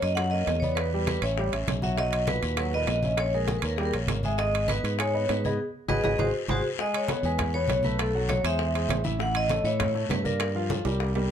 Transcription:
Already playing: grand piano A#3 A#4 C#5
0.02 fingered electric bass F#2, vibraphone D#5, high bongo, high conga, high timbale, short guiro
0.15 grand piano F#3 F#4 F#5, vibraphone F#5, high bongo, high conga, high timbale, long guiro
0.31 grand piano A#3 A#4 C#5, vibraphone D#5, high bongo, high conga
0.47 fingered electric bass E2, high bongo, low bongo, high conga, high timbale, low timbale, short guiro
0.60 grand piano B3 B4 D5, vibraphone C#5, high bongo, high conga, short guiro
0.75 vibraphone B4, high bongo, high conga, high timbale, long guiro
0.92 grand piano G3 G4 G5, high conga
1.07 vibraphone B4, high bongo, high conga, high timbale, low timbale, short guiro
1.22 fingered electric bass A1, grand piano C#4 C#5 E5, vibraphone C#5, high bongo, high conga, high timbale, short guiro
1.37 grand piano G3 G4 G5, high bongo, high conga, long guiro
1.53 fingered electric bass A1, grand piano C#4 C#5 E5, high bongo, high conga, high timbale
1.68 fingered electric bass B1, high bongo, low bongo, high conga, high timbale, low timbale, short guiro
1.82 grand piano F#3 F#4 F#5, vibraphone E5, high bongo, high conga, short guiro
1.97 grand piano F#3 F#4 F#5, vibraphone D#5, high bongo, high conga, high timbale, long guiro
2.12 high conga, high timbale
2.27 grand piano A#2 F#4 B4, vibraphone B4, high bongo, high conga, high timbale, low timbale, short guiro
2.42 fingered electric bass D#2, high bongo, high conga, high timbale, short guiro
2.57 grand piano F#3 F#4 F#5, vibraphone B4, high bongo, high conga, high timbale, long guiro
2.72 grand piano A#2 A#4 B4, vibraphone D#5, high bongo, high conga
2.87 fingered electric bass A#1, high bongo, low bongo, high conga, high timbale, low timbale, short guiro
3.03 grand piano C#4 C#5 E5, high bongo, high conga, short guiro
3.17 vibraphone C#5, high bongo, high timbale, long guiro
3.33 grand piano G#3 G#4 G#5, vibraphone A#4, high conga
3.48 high bongo, high conga, high timbale, low timbale, short guiro
3.59 fingered electric bass D#2, vibraphone B4, high bongo, high timbale
3.63 grand piano A#3 A#4 C#5, high conga, short guiro
3.68 vibraphone A#4
3.76 grand piano G3 G4 G5, vibraphone G#4, high bongo, high conga, long guiro
3.85 vibraphone A#4
3.93 fingered electric bass A#1, grand piano A#3 A#4 C#5, high bongo, high conga, high timbale
4.07 fingered electric bass G#1, high bongo, low bongo, high conga, high timbale, low timbale, short guiro
4.23 grand piano G#3 G#4 G#5, vibraphone E5, high bongo, high conga, short guiro
4.38 grand piano G#3 G#4 G#5, vibraphone D#5, high bongo, high timbale, long guiro
4.53 high conga, high timbale
4.68 grand piano B3 B4 D#5, vibraphone B4, high bongo, high conga, high timbale, low timbale, short guiro
4.83 fingered electric bass G#2, high conga, high timbale, short guiro
4.99 grand piano G#3 G#4 G#5, vibraphone C#5, high bongo, high conga, high timbale, long guiro
5.14 grand piano B3 B4 D#5, high bongo, high conga
5.29 fingered electric bass G#2, vibraphone B4, high bongo, low bongo, high conga, high timbale, low timbale, short guiro
5.44 grand piano B3 B4 D#5, vibraphone G#4, high bongo, high conga, short guiro
5.88 fingered electric bass G#1, grand piano F#4 G#4 B4, vibraphone G#4 B4 D#5, low bongo, high conga, high timbale, long guiro
6.03 fingered electric bass G#1, grand piano F#4 G#4 B4, vibraphone G#4 B4 D#5, low bongo, high conga, high timbale, long guiro
6.18 fingered electric bass G#1, grand piano F#4 G#4 C5, vibraphone F#4 G#4 C5, low bongo, high conga, high timbale, long guiro
6.48 fingered electric bass G#1, grand piano F#4 G#4 C5, vibraphone F#4 G#4 C5, low bongo, high conga, high timbale, long guiro
6.78 grand piano G#3 G#4 G#5, vibraphone D#5, high bongo, high conga, long guiro
6.94 vibraphone C#5, high conga, high timbale
7.08 grand piano B3 B4 C#5, high bongo, high conga, high timbale, low timbale, short guiro
7.23 fingered electric bass E2, grand piano G#3 G#4 G#5, vibraphone B4, high bongo, high conga, short guiro
7.38 high bongo, high conga, low conga, high timbale, long guiro
7.54 grand piano B3 B4 C#5, vibraphone C#5, high bongo, high conga
7.68 fingered electric bass B1, high bongo, low bongo, high conga, high timbale, low timbale, short guiro
7.83 grand piano A3 A4 B4, vibraphone B4, high bongo, high conga, short guiro
7.98 vibraphone A4, high bongo, high conga, high timbale, long guiro
8.13 grand piano F#3 F#4 F#5, high conga
8.29 vibraphone C#5, high bongo, high conga, high timbale, low timbale, short guiro
8.43 fingered electric bass E2, grand piano G#3 G#4 C5, vibraphone E5, high bongo, high conga, high timbale, short guiro
8.59 high bongo, high conga, long guiro
8.74 grand piano G#3 G#4 C5, high bongo, high conga, high timbale
8.88 fingered electric bass A1, high bongo, low bongo, high conga, high timbale, low timbale, short guiro
9.04 grand piano E3 E4 E5, high bongo, high conga, short guiro
9.18 grand piano E3 E4 E5, vibraphone F#5, high bongo, high conga, long guiro
9.35 vibraphone D#5, high conga, high timbale
9.50 grand piano A3 A4 C#5, high bongo, high conga, high timbale, low timbale, short guiro
9.64 fingered electric bass A2, grand piano E3 E4 E5, vibraphone C#5, high bongo, high conga, short guiro
9.80 high bongo, high conga, low conga, high timbale, long guiro
9.94 grand piano A3 A4 C#5, high bongo, high conga
10.09 fingered electric bass G2, vibraphone B4, high bongo, low bongo, high conga, high timbale, low timbale, short guiro
10.24 grand piano A#3 A#4 D5, vibraphone A#4, high bongo, high conga, short guiro
10.40 high bongo, high conga, high timbale, long guiro
10.55 grand piano F3 F4 F5, high conga
10.70 high bongo, high conga, high timbale, short guiro
10.85 fingered electric bass C2, grand piano G3 G4 A#4, high conga, high timbale, short guiro
11.00 high bongo, high conga, long guiro
11.15 grand piano G3 G4 A#4, high bongo, high conga, low timbale

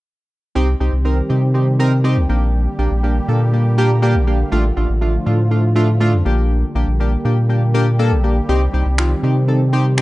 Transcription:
0.55 sub bass C2, analog synth pad D#3 G3 C4 G4, synth keys C4 D#4 G4
0.80 sub bass C2, synth keys C4 D#4 G4
0.93 sub bass C2
1.05 synth keys C4 D#4 A#4
1.29 sub bass C3, synth keys C4 D#4 G4
1.54 synth keys C4 D#4 G4
1.79 synth keys C4 D#4 A#4
2.04 synth keys C4 D#4 G4
2.17 sub bass C2
2.29 sub bass A#1, analog synth pad D3 G3 A#3 G4, synth keys A#3 D4 G4
2.79 sub bass A#1, synth keys A#3 D4 G4
2.91 sub bass A#1
3.03 synth keys A#3 D4 G4
3.28 sub bass A#2, synth keys A#3 D4 A4
3.53 synth keys A#3 D4 G4
3.78 synth keys A#3 D4 G4 A#5
4.02 synth keys A#3 D4 G4 G5
4.15 sub bass A#1
4.27 synth keys A#3 D4 G4 F5
4.52 sub bass A1, analog synth pad F3 A3 F4, synth keys A3 D4 F4
4.76 sub bass A1, synth keys A3 D4 F4
4.90 sub bass A1
5.01 synth keys A3 D4 F4
5.26 sub bass A2, synth keys A3 D4 F4
5.51 synth keys A3 D4 F4
5.76 synth keys A3 D4 F4
6.00 synth keys A3 D4 F4
6.13 sub bass F2
6.25 sub bass A#1, analog synth pad G3 A#3 G4, synth keys A#3 D4 G4
6.75 sub bass A#1, synth keys A#3 D4 G4
6.88 sub bass A#1
7.00 synth keys A#3 D4 G4
7.25 sub bass A#2, synth keys A#3 D4 G4
7.49 synth keys A#3 D4 G4
7.74 synth keys A#3 D4 G4
7.99 synth keys A#3 D4 A4
8.12 sub bass A#1
8.24 synth keys A#3 D4 G4
8.48 sub bass C2, analog synth pad D#3 C4, synth keys C4 D#4 G4
8.73 sub bass C2, synth keys C4 D#4 G4
8.86 sub bass C2
8.98 synth keys C4 D#4 F4, finger snap
9.23 sub bass C3, synth keys C4 D#4 G4
9.48 synth keys C4 D#4 A4
9.73 synth keys C4 D#4 G4
9.97 synth keys C4 D#4 G4, finger snap

